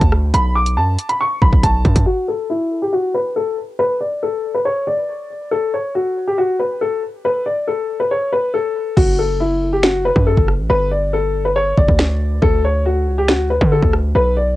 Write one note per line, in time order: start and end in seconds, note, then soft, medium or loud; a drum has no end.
0.00 0.32 D2 loud
0.00 0.10 A5 medium
0.00 kick medium
0.00 closed hi-hat medium
0.12 cross-stick loud
0.34 0.78 B1 loud
0.34 0.54 B5 loud
0.34 closed hi-hat medium
0.55 0.75 D6 medium
0.66 closed hi-hat medium
0.77 0.97 F#2 loud
0.77 1.07 A5 medium
0.98 closed hi-hat medium
1.09 1.19 B5 medium
1.09 closed hi-hat medium
1.20 1.40 C#6 medium
1.42 1.52 B1 loud
1.42 1.62 B5 medium
1.42 kick loud
1.53 1.63 B1 loud
1.53 kick loud
1.63 1.84 B1 loud
1.63 2.04 A5 medium
1.63 kick medium
1.63 closed hi-hat medium
1.85 1.95 F#2 loud
1.85 kick loud
1.85 closed hi-hat soft
1.96 2.06 F#2 loud
1.96 kick loud
1.96 closed hi-hat medium
2.06 2.26 F#4 medium
2.28 2.48 A4 medium
2.50 2.80 E4 medium
2.82 2.92 G4 medium
2.93 3.12 F#4 medium
3.14 3.34 B4 medium
3.36 3.56 A4 medium
3.79 3.99 B4 loud
4.01 4.20 D5 medium
4.23 4.53 A4 medium
4.54 4.64 B4 medium
4.65 4.85 C#5 medium
4.87 5.48 D5 medium
5.51 5.71 A4 loud
5.74 5.93 C#5 medium
5.95 6.25 F#4 medium
6.27 6.37 G4 medium
6.38 6.58 F#4 medium
6.59 6.79 B4 medium
6.81 7.01 A4 medium
7.25 7.44 B4 medium
7.46 7.66 D5 medium
7.68 7.98 A4 medium
8.00 8.10 B4 medium
8.11 8.31 C#5 medium
8.33 8.52 B4 medium
8.54 8.94 A4 medium
8.97 10.12 F#1 loud
8.97 9.17 F#4 loud
8.97 kick loud
8.97 crash loud
9.19 9.38 A4 medium
9.40 9.71 E4 medium
9.73 9.83 G4 medium
9.83 10.03 F#4 medium
9.83 finger snap medium
9.83 snare loud
10.05 10.25 B4 medium
10.16 10.36 F#2 loud
10.16 kick loud
10.27 10.46 A4 medium
10.37 10.60 F#1 loud
10.37 kick medium
10.48 cross-stick medium
10.59 10.69 A1 loud
10.70 11.74 G1 loud
10.70 10.89 B4 loud
10.91 11.11 D5 medium
11.13 11.43 A4 medium
11.45 11.55 B4 medium
11.56 11.76 C#5 medium
11.78 11.88 F#1 loud
11.78 12.38 D5 medium
11.78 kick loud
11.88 12.40 D2 loud
11.88 kick medium
11.99 finger snap loud
11.99 snare loud
12.42 13.09 D2 loud
12.42 12.62 A4 loud
12.42 kick loud
12.65 12.84 C#5 medium
12.86 13.16 F#4 medium
13.07 13.36 C#2 loud
13.18 13.28 G4 medium
13.28 13.49 F#4 medium
13.28 finger snap loud
13.28 snare loud
13.34 13.60 D2 loud
13.50 13.70 B4 medium
13.61 13.82 D3 loud
13.61 kick medium
13.72 13.92 A4 medium
13.82 14.14 D2 loud
13.82 kick medium
13.93 cross-stick loud
14.15 14.56 B1 loud
14.15 14.35 B4 loud
14.37 14.56 D5 medium